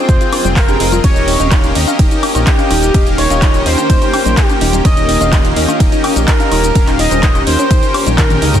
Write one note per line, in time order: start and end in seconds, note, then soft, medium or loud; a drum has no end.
0.00 1.00 F3 medium
0.00 1.00 G#3 loud
0.00 0.66 C4 loud
0.00 1.00 C4 medium
0.00 1.00 D#4 medium
0.00 0.66 F4 medium
0.00 0.66 G#4 medium
0.00 0.47 C5 loud
0.00 0.66 G5 loud
0.00 8.60 G5 medium
0.09 0.19 F1 medium
0.09 0.15 F4 medium
0.09 kick loud
0.09 closed hi-hat medium
0.09 high woodblock soft
0.09 shaker medium
0.21 0.27 F4 medium
0.21 closed hi-hat soft
0.21 shaker soft
0.32 0.39 A#4 medium
0.32 open hi-hat loud
0.32 high conga medium
0.32 high woodblock medium
0.45 0.77 F1 loud
0.45 0.51 F4 medium
0.45 closed hi-hat soft
0.45 low conga loud
0.45 shaker medium
0.56 0.63 F4 medium
0.56 0.99 A#4 medium
0.56 kick loud
0.56 clap loud
0.56 open hi-hat medium
0.56 high woodblock medium
0.56 shaker medium
0.68 0.77 C4 medium
0.68 0.77 F4 medium
0.68 0.75 G4 medium
0.68 0.77 G#4 medium
0.68 0.77 G5 loud
0.68 closed hi-hat soft
0.68 high conga medium
0.68 shaker soft
0.80 1.00 F1 medium
0.80 1.01 C4 medium
0.80 1.01 F4 medium
0.80 0.87 F4 medium
0.80 1.01 G#4 medium
0.80 1.01 D#5 medium
0.80 open hi-hat loud
0.92 0.99 F4 medium
0.92 closed hi-hat soft
0.92 low conga medium
0.92 high woodblock soft
0.92 shaker medium
1.04 1.37 D#1 loud
1.04 8.60 D#3 medium
1.04 8.60 A#3 medium
1.04 1.37 C#4 medium
1.04 8.60 C#4 medium
1.04 8.60 F4 medium
1.04 1.37 G4 medium
1.04 1.37 A#4 medium
1.04 1.66 C#5 loud
1.04 1.11 C#5 loud
1.04 1.66 C#5 loud
1.04 1.37 D#5 loud
1.04 kick loud
1.04 closed hi-hat medium
1.04 ride medium
1.04 high conga medium
1.04 high woodblock soft
1.04 shaker medium
1.16 1.22 D#4 medium
1.16 closed hi-hat soft
1.16 shaker soft
1.28 1.34 D#4 medium
1.28 open hi-hat loud
1.40 1.72 D#1 loud
1.40 1.73 C#4 medium
1.40 1.73 G4 medium
1.40 1.73 A#4 medium
1.40 1.46 D#5 medium
1.40 1.73 F5 medium
1.40 closed hi-hat soft
1.40 high conga medium
1.40 shaker medium
1.52 1.58 D#4 medium
1.52 kick loud
1.52 clap loud
1.52 closed hi-hat medium
1.52 ride medium
1.52 high woodblock medium
1.52 shaker medium
1.64 1.70 D#4 medium
1.64 closed hi-hat soft
1.64 shaker soft
1.75 1.86 D#2 loud
1.75 2.92 C#4 medium
1.75 1.82 D#4 medium
1.75 2.92 G4 medium
1.75 2.92 A#4 medium
1.75 2.92 D#5 medium
1.75 open hi-hat loud
1.87 1.94 F5 medium
1.87 closed hi-hat soft
1.87 high conga medium
1.87 high woodblock soft
1.87 shaker medium
1.99 2.09 D#1 medium
1.99 2.06 D#4 medium
1.99 kick loud
1.99 closed hi-hat medium
1.99 ride medium
1.99 shaker medium
2.11 2.18 D#4 medium
2.11 closed hi-hat soft
2.11 shaker soft
2.23 2.30 G5 loud
2.23 open hi-hat loud
2.23 high conga medium
2.23 high woodblock medium
2.35 2.45 A#1 loud
2.35 2.42 D#4 medium
2.35 closed hi-hat soft
2.35 high woodblock medium
2.35 shaker medium
2.47 2.53 D#4 medium
2.47 3.09 G4 loud
2.47 kick loud
2.47 clap loud
2.47 closed hi-hat medium
2.47 ride medium
2.47 shaker medium
2.59 2.65 F5 medium
2.59 closed hi-hat soft
2.59 high conga medium
2.59 shaker soft
2.71 2.91 D#1 loud
2.71 2.77 D#4 medium
2.71 open hi-hat loud
2.71 high woodblock soft
2.83 2.89 D#4 medium
2.83 closed hi-hat soft
2.83 shaker medium
2.94 3.27 D#1 loud
2.94 3.27 C#4 medium
2.94 3.27 G4 medium
2.94 3.27 A#4 medium
2.94 3.01 D#5 loud
2.94 3.27 F5 medium
2.94 kick loud
2.94 closed hi-hat medium
2.94 ride medium
2.94 high conga loud
2.94 shaker medium
3.07 3.13 D#4 medium
3.07 closed hi-hat soft
3.07 shaker soft
3.18 3.25 D#4 medium
3.18 3.61 C#5 medium
3.18 3.61 C#5 loud
3.18 open hi-hat loud
3.18 high woodblock medium
3.30 3.63 D#1 loud
3.30 3.63 C#4 loud
3.30 3.63 G4 medium
3.30 3.63 A#4 medium
3.30 3.63 D#5 loud
3.30 3.37 F5 medium
3.30 closed hi-hat soft
3.30 high conga medium
3.30 shaker medium
3.42 3.49 D#4 medium
3.42 kick loud
3.42 clap loud
3.42 closed hi-hat medium
3.42 ride medium
3.42 shaker medium
3.54 3.61 D#4 medium
3.54 closed hi-hat soft
3.54 high woodblock soft
3.54 shaker soft
3.66 3.76 D#2 medium
3.66 4.82 C#4 loud
3.66 3.73 D#4 medium
3.66 4.82 G4 medium
3.66 4.82 A#4 medium
3.66 4.39 C5 loud
3.66 4.82 G5 loud
3.66 open hi-hat loud
3.78 3.84 G5 loud
3.78 closed hi-hat soft
3.78 high conga medium
3.78 shaker medium
3.90 4.00 D#1 medium
3.90 3.96 D#4 medium
3.90 kick loud
3.90 closed hi-hat medium
3.90 ride medium
3.90 shaker medium
4.02 4.08 D#4 medium
4.02 closed hi-hat soft
4.02 high woodblock medium
4.02 shaker soft
4.13 4.20 G5 medium
4.13 open hi-hat loud
4.13 high conga medium
4.13 high woodblock medium
4.25 4.35 A#1 loud
4.25 4.32 D#4 medium
4.25 closed hi-hat soft
4.25 low conga medium
4.25 shaker medium
4.37 4.44 D#4 medium
4.37 4.80 G4 loud
4.37 4.80 G4 medium
4.37 kick loud
4.37 clap loud
4.37 closed hi-hat medium
4.37 ride medium
4.37 high woodblock soft
4.37 shaker medium
4.49 4.56 G5 loud
4.49 closed hi-hat soft
4.49 high conga loud
4.49 shaker soft
4.61 4.81 D#1 loud
4.61 4.68 D#4 medium
4.61 open hi-hat loud
4.73 4.80 D#4 medium
4.73 closed hi-hat soft
4.73 low conga medium
4.73 shaker medium
4.85 5.18 D#1 loud
4.85 5.18 C#4 loud
4.85 5.18 G4 medium
4.85 5.18 A#4 medium
4.85 4.92 C#5 loud
4.85 5.47 D#5 loud
4.85 5.18 D#5 loud
4.85 5.47 D#5 loud
4.85 kick loud
4.85 closed hi-hat medium
4.85 ride medium
4.85 high conga loud
4.85 high woodblock medium
4.85 shaker medium
4.97 5.04 D#4 medium
4.97 closed hi-hat soft
4.97 shaker soft
5.09 5.15 D#4 medium
5.09 open hi-hat loud
5.21 5.53 D#1 loud
5.21 5.54 C#4 medium
5.21 5.54 G4 medium
5.21 5.54 A#4 medium
5.21 5.27 D#5 medium
5.21 5.54 F5 medium
5.21 closed hi-hat soft
5.21 high conga medium
5.21 high woodblock soft
5.21 shaker medium
5.33 5.39 D#4 medium
5.33 kick loud
5.33 clap loud
5.33 closed hi-hat medium
5.33 ride medium
5.33 shaker medium
5.45 5.51 D#4 medium
5.45 closed hi-hat soft
5.45 shaker soft
5.56 5.67 D#2 medium
5.56 6.73 C#4 medium
5.56 5.63 D#4 medium
5.56 6.73 G4 medium
5.56 6.73 A#4 medium
5.56 6.73 D#5 medium
5.56 open hi-hat loud
5.68 5.75 F5 loud
5.68 closed hi-hat soft
5.68 high conga medium
5.68 high woodblock medium
5.68 shaker medium
5.80 5.90 D#1 medium
5.80 5.87 D#4 medium
5.80 kick loud
5.80 closed hi-hat medium
5.80 ride medium
5.80 shaker medium
5.92 5.99 D#4 medium
5.92 closed hi-hat soft
5.92 shaker soft
6.04 6.11 G5 loud
6.04 open hi-hat loud
6.04 high conga medium
6.04 high woodblock soft
6.04 high woodblock medium
6.16 6.26 A#1 loud
6.16 6.23 D#4 medium
6.16 closed hi-hat soft
6.16 shaker medium
6.28 6.34 D#4 medium
6.28 6.90 A#4 loud
6.28 kick loud
6.28 clap loud
6.28 closed hi-hat medium
6.28 ride medium
6.28 shaker medium
6.40 6.46 F5 medium
6.40 closed hi-hat soft
6.40 high conga loud
6.40 shaker soft
6.52 6.72 D#1 medium
6.52 6.58 D#4 medium
6.52 open hi-hat loud
6.52 high woodblock medium
6.64 6.70 D#4 medium
6.64 closed hi-hat soft
6.64 shaker medium
6.75 7.08 D#1 loud
6.75 7.08 C#4 medium
6.75 7.08 G4 medium
6.75 6.82 A#4 loud
6.75 7.08 A#4 medium
6.75 7.08 F5 medium
6.75 kick loud
6.75 closed hi-hat medium
6.75 ride medium
6.75 high conga loud
6.75 shaker medium
6.87 6.94 D#4 medium
6.87 clap soft
6.87 closed hi-hat soft
6.87 high woodblock soft
6.87 shaker soft
6.99 7.06 D#4 medium
6.99 7.42 D#5 medium
6.99 7.42 D#5 loud
6.99 open hi-hat loud
7.11 7.44 D#1 loud
7.11 7.44 C#4 loud
7.11 7.44 G4 medium
7.11 7.44 A#4 medium
7.11 7.18 C5 loud
7.11 7.44 D#5 loud
7.11 closed hi-hat soft
7.11 high conga medium
7.11 low conga medium
7.11 shaker medium
7.23 7.30 D#4 medium
7.23 kick loud
7.23 clap loud
7.23 closed hi-hat medium
7.23 ride medium
7.23 shaker medium
7.35 7.42 D#4 medium
7.35 closed hi-hat soft
7.35 high woodblock medium
7.35 shaker soft
7.47 7.57 D#2 medium
7.47 8.28 C#4 loud
7.47 7.53 D#4 medium
7.47 8.28 G4 medium
7.47 8.28 A#4 medium
7.47 8.09 C5 loud
7.47 8.28 G5 loud
7.47 open hi-hat loud
7.59 7.65 C#5 medium
7.59 closed hi-hat soft
7.59 high conga loud
7.59 shaker medium
7.71 7.81 D#1 medium
7.71 7.77 D#4 medium
7.71 kick loud
7.71 closed hi-hat medium
7.71 ride medium
7.71 high woodblock soft
7.71 shaker medium
7.83 7.89 D#4 medium
7.83 closed hi-hat soft
7.83 shaker soft
7.94 8.01 C5 loud
7.94 open hi-hat loud
7.94 high conga medium
7.94 high woodblock medium
8.06 8.39 A#1 loud
8.06 8.13 D#4 medium
8.06 closed hi-hat soft
8.06 low conga medium
8.06 shaker medium
8.18 8.25 D#4 medium
8.18 8.60 A#4 medium
8.18 8.60 A#4 loud
8.18 kick loud
8.18 clap loud
8.18 closed hi-hat medium
8.18 high tom medium
8.18 ride medium
8.18 high woodblock medium
8.18 shaker medium
8.30 8.39 C#4 loud
8.30 8.39 G4 medium
8.30 8.37 A#4 medium
8.30 8.39 A#4 medium
8.30 8.39 G5 loud
8.30 closed hi-hat soft
8.30 high tom medium
8.30 high conga loud
8.30 shaker soft
8.42 8.60 C#2 loud
8.42 8.60 C#4 medium
8.42 8.49 D#4 medium
8.42 8.60 G4 medium
8.42 8.60 A#4 medium
8.42 8.60 D#5 medium
8.42 open hi-hat loud
8.54 8.60 D#4 medium
8.54 closed hi-hat soft
8.54 mid tom medium
8.54 low conga medium
8.54 high woodblock soft
8.54 shaker medium